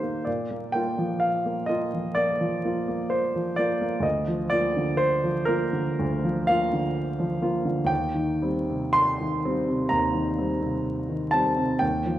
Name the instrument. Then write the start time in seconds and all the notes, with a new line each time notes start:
grand piano
Already playing: D#3 A#3 G4 C5
0.03 A#3
0.25 A#2 D5
0.51 A#3
0.72 A#3 F4 G5
0.98 F3
1.20 F5
1.46 A#3
1.66 A#3 F4 D#5
1.94 F3
2.15 A#3 D5
2.41 F3
2.65 A#3 F4
2.88 A#3
3.10 C5
3.36 F3
3.56 A#3 F4 D5
3.81 A#3
4.00 D2 D#5
4.28 F3
4.50 A#3 F4 D5
4.76 D3
4.97 C5
5.24 F3
5.45 A#3 F4 A#4
5.73 D3
5.99 D2
6.24 F3
6.47 A#3 F4 F5
6.73 D3
7.20 F3
7.42 A#3 F4
7.65 D3
7.84 D#2 G5
8.15 D#3
8.42 G3 C4
8.70 C3
8.93 C6
9.21 D#3
9.45 G3 C4
9.68 C3
9.89 D#2 A#5
10.15 D#3
10.38 G3 C4
10.62 C3
11.09 D#3
11.31 G3 C4 A5
11.57 C3
11.79 D#2 G5
12.06 F3